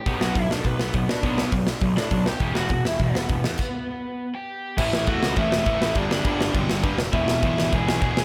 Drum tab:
CC |--------|--------|--------|x-------|
HH |o-o-o-o-|o-o-o-o-|o-o-o-o-|--------|
SD |-o-o-o-o|-o-o-o-o|-o-o-o-o|--------|
BD |o-o-o-o-|o-o-o-o-|o-o-o-o-|o-------|

CC |x-x-x-x-|x-x-x-x-|x-x-x-x-|
HH |--------|--------|--------|
SD |-o-o-o-o|-o-o-o-o|-o-o-o-o|
BD |o-o-o-o-|o-o-o-o-|o-o-o-o-|